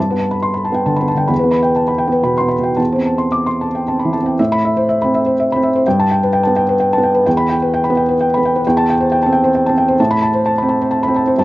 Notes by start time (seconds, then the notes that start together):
Already playing: G2
0.00 A5
0.10 B3 B4
0.19 A5
0.31 B5
0.42 C6
0.54 B5
0.65 A5
0.72 B3 G5
0.86 D3 A5
0.96 B5
1.01 B3
1.08 A5
1.15 D3 G5
1.28 E2 B5
1.39 B4
1.44 B3
1.51 B5
1.63 G5
1.76 A5
1.88 B5
1.98 G5
2.08 B3
2.12 B4
2.23 B2 B5
2.38 B3 C6
2.48 B5
2.59 B2
2.63 G5
2.77 E2 A5
2.92 C4 C5
3.06 A5
3.18 C6
3.32 D6
3.46 C6
3.61 A5
3.75 G5
3.88 C4 A5
3.99 B5
4.05 E3
4.13 A5
4.22 C4
4.26 G5
4.39 A2 E5
4.52 B5
4.65 E5
4.77 C5
4.89 E5
5.02 C4 B5
5.14 E5
5.26 C5
5.40 E5
5.52 C4 B5
5.63 E5
5.76 C5
5.87 G2 G5
6.00 A5
6.11 G5
6.23 B4
6.33 G5
6.43 B3 A5
6.56 G5
6.69 B4
6.80 G5
6.93 A5
6.98 B3
7.03 G5
7.15 B4
7.26 E2 G5
7.37 B5
7.49 G5
7.62 B4
7.74 G5
7.84 B5
7.90 B3
7.97 G5
8.09 B4
8.21 G5
8.34 B3 B5
8.45 G5
8.56 B4
8.67 E2 G5
8.77 A5
8.90 G5
9.00 C5
9.12 G5
9.23 C4 A5
9.33 G5
9.44 C5
9.55 G5
9.66 C4 A5
9.78 G5
9.88 C5
10.00 A2 A5
10.11 B5
10.22 A5
10.34 C5
10.46 A5
10.58 B5
10.62 C4
10.69 A5
10.82 C5
10.91 A5
11.03 B5
11.08 C4
11.16 A5
11.27 C5
11.38 G2 A5